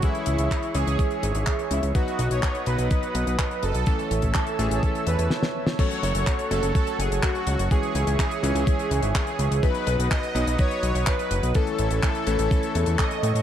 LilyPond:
<<
  \new Staff \with { instrumentName = "Analog synth pad" } { \time 4/4 \key cis \minor \tempo 4 = 125 << { cis'''1 | dis'''1 | e'''1 | cis'''1~ |
cis'''1 | dis'''1 | cis'''1 | } \\ { <gis' cis'' e''>1 | <b' dis'' fis''>1 | <cis'' e'' a''>1 | <a' cis'' fis''>1 |
<gis' cis'' e''>1 | <b' dis'' fis''>1 | <e' a' cis''>1 | } >> }
  \new Staff \with { instrumentName = "Analog polysynth" } { \time 4/4 \key cis \minor e'4. gis'2 e'8 | fis'8. cis''8. b'8 b'4. a'8~ | a'4 a'8 gis'8 a'8 b'8 r4 | cis''4. a'8 a'8 gis'8 fis'4 |
gis'4 gis'2 gis'4 | b'4 dis''4 cis''4 b'4 | a'2. dis''4 | }
  \new Staff \with { instrumentName = "Electric grand piano" } { \time 4/4 \key cis \minor <e gis cis' gis'>4. <e gis cis' gis'>2~ <e gis cis' gis'>8 | <fis b dis' b'>4. <fis b dis' b'>2~ <fis b dis' b'>8 | <e a cis' a'>4. <e a cis' a'>4. r4 | <fis a cis' a'>4. <fis a cis' a'>2~ <fis a cis' a'>8 |
<e gis cis' gis'>4. <e gis cis' gis'>2~ <e gis cis' gis'>8 | <fis b dis' b'>4. <fis b dis' b'>2~ <fis b dis' b'>8 | <e a cis' a'>4. <e a cis' a'>2~ <e a cis' a'>8 | }
  \new Staff \with { instrumentName = "Analog synth bass" } { \clef bass \time 4/4 \key cis \minor r8 cis,16 cis,16 r8 cis,16 cis,16 r8 gis,,16 gis,,16 r8 cis,16 cis,16 | r8 b,,16 b,,16 r8 b,,16 b,,16 r8 b,,16 b,,16 r8 fis,,16 b,,16 | r8 a,,16 a,,16 r8 a,,16 a,,16 r8 e,16 e,16 r4 | r8 fis,,16 fis,,16 r8 fis,,16 fis,,16 r8 fis,,16 fis,,16 r8 cis,16 fis,,16 |
r8 cis,16 cis,16 r8 cis,16 cis,16 r8 cis,16 gis,,16 r8 cis,16 cis,16 | r8 b,,16 b,,16 r8 b,,16 b,,16 r8 b,,16 b,,16 r8 fis,,16 b,,16 | r8 a,,16 a,,16 r8 a,,16 a,,16 r8 e,16 e,16 r8 a,16 a,16 | }
  \new DrumStaff \with { instrumentName = "Drums" } \drummode { \time 4/4 <hh bd>16 hh16 hh16 hh16 <hc hh bd>16 hh16 hh16 hh16 <hh bd>16 hh16 hh16 hh16 <hc hh bd>16 hh16 hh16 hh16 | <hh bd>16 hh16 hh16 hh16 <hc hh bd>16 hh16 hh16 hh16 <hh bd>16 hh16 hh16 hh16 <hc hh bd>16 hh16 hh16 hh16 | <hh bd>16 hh16 hh16 <hh bd>16 <hc hh bd>16 hh16 hh16 hh16 <hh bd>16 hh16 hh16 hh16 sn16 sn8 sn16 | <cymc hh bd>16 hh16 hh16 hh16 <hc hh bd>16 hh16 hh16 hh16 <hh bd>16 hh16 hh16 hh16 <hc hh bd>16 hh16 hh16 hh16 |
<hh bd>16 hh16 hh16 hh16 <hc hh bd>16 hh16 hh16 hh16 <hh bd>16 hh16 hh16 hh16 <hc hh bd>16 hh16 hh16 hh16 | <hh bd>16 hh16 hh16 hh16 <hc hh bd>16 hh16 hh16 hh16 <hh bd>16 hh16 hh16 hh16 <hc hh bd>16 hh16 hh16 hh16 | <hh bd>16 hh16 hh16 hh16 <hc hh bd>16 hh16 hh16 hh16 <hh bd>16 hh16 hh16 hh16 <hc hh bd>16 hh16 hh16 hh16 | }
>>